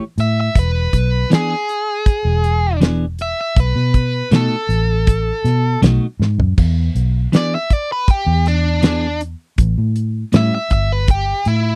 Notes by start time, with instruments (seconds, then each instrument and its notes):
0.18 fingered electric bass A2, overdriven electric guitar E5, closed hi-hat
0.41 overdriven electric guitar E5
0.55 fingered electric bass E1, overdriven electric guitar B4, kick, closed hi-hat
0.93 fingered electric bass B1, kick, closed hi-hat
1.30 clean electric guitar E3 B3 D4 G#4, snare, closed hi-hat
1.35 overdriven electric guitar G#4
1.69 closed hi-hat
2.06 kick, closed hi-hat
2.25 fingered electric bass E1
2.44 closed hi-hat
2.81 clean electric guitar E3 B3 D4 G#4, snare, closed hi-hat
3.19 overdriven electric guitar E5, closed hi-hat
3.41 overdriven electric guitar E5
3.56 fingered electric bass B1, overdriven electric guitar B4, kick, closed hi-hat
3.76 fingered electric bass B2
3.94 kick, closed hi-hat
4.31 clean electric guitar B2 A3 D#4 F#4, fingered electric bass B2, snare, closed hi-hat
4.36 overdriven electric guitar A4
4.69 fingered electric bass A1, closed hi-hat
5.07 kick, closed hi-hat
5.44 fingered electric bass B2, snare, closed hi-hat
5.82 fingered electric bass B1, clean electric guitar B2 A3 D#4 F#4, snare, closed hi-hat
6.20 fingered electric bass G#2, snare
6.38 fingered electric bass F#2, floor tom
6.58 fingered electric bass E2, kick, crash
6.95 fingered electric bass B1, closed hi-hat
7.32 clean electric guitar E3 B3 D4 G#4, overdriven electric guitar D5, snare, closed hi-hat
7.55 overdriven electric guitar E5
7.70 overdriven electric guitar D5, kick, closed hi-hat
7.92 overdriven electric guitar B4
8.08 overdriven electric guitar G4, kick, closed hi-hat
8.27 fingered electric bass E2
8.46 overdriven electric guitar D4, closed hi-hat
8.82 clean electric guitar E3 B3 D4 G#4, snare, closed hi-hat
9.21 closed hi-hat
9.58 fingered electric bass A1, kick, closed hi-hat
9.78 fingered electric bass A2
9.96 closed hi-hat
10.32 clean electric guitar A2 G3 C#4 E4, fingered electric bass A2, overdriven electric guitar E5, snare, closed hi-hat
10.55 overdriven electric guitar E5
10.70 fingered electric bass G1, overdriven electric guitar E5, kick, closed hi-hat
10.92 overdriven electric guitar B4
11.08 overdriven electric guitar G4, kick, closed hi-hat
11.45 fingered electric bass A2, overdriven electric guitar E4, closed hi-hat